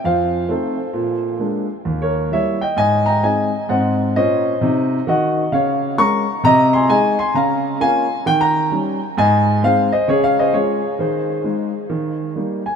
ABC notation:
X:1
M:4/4
L:1/16
Q:"Swing" 1/4=132
K:Ab
V:1 name="Grand piano"
[cf]4 [=Ac]8- [Ac]2 z2 | z [Bd]3 [d_f]2 [eg]2 [ea]2 [gb]2 [ea]4 | [e_g]4 [ce]8 [eg]4 | [df]4 [bd']4 [eb]2 [ac']2 [ea]2 [ac']2 |
[fb]4 [fa]4 g [gb]3 z4 | [ea]4 [cf]2 [ce]2 (3[Ad]2 [df]2 [ce]2 [Ad]4 | [Ac]12- [Ac]2 a2 |]
V:2 name="Grand piano"
F,,4 [=A,CE]4 B,,4 [_A,B,=D]4 | E,,4 [G,B,_F]4 A,,4 [A,CE]4 | [A,,C]4 [B,,D]4 [C,E]4 [E,_G]4 | D,4 [A,DB]4 C,4 [A,EA]4 |
D,4 [B,DF]4 E,4 [G,DE]4 | A,,4 [A,CE]4 D,4 [A,DF]4 | E,4 [A,E]4 E,4 [G,B,E]4 |]